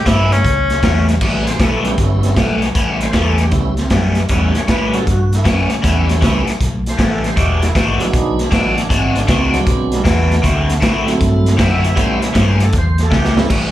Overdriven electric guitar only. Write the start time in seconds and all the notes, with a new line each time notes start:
0.05 A2 G3 B3 C#4
0.83 A2 G3 B3 C#4
1.22 A2 G3 B3 C#4
1.60 A2 G3 B3 C#4
2.37 A2 G3 B3 C#4
2.75 A2 G3 B3 C#4
3.13 A2 G3 B3 C#4
3.91 A2 G3 B3 C#4
4.29 A2 G3 B3 C#4
4.67 A2 G3 B3 C#4
5.44 A2 G3 B3 C#4
5.82 A2 G3 B3 C#4
6.21 A2 G3 B3 C#4
6.97 A2 G3 B3 C#4
7.36 E3 G#3 D4 F#4
7.75 E3 G#3 D4 F#4
8.51 E3 G#3 D4 F#4
8.90 E3 G#3 D4 F#4
9.27 E3 G#3 D4 F#4
10.04 E3 G#3 D4 F#4
10.42 D3 C4 E4 F#4
10.80 D3 C4 E4 F#4
11.57 D3 C4 E4 F#4
11.95 A2 G3 B3 C#4
12.33 A2 G3 B3 C#4
13.10 A2 G3 B3 C#4
13.49 A2 G3 B3 C#4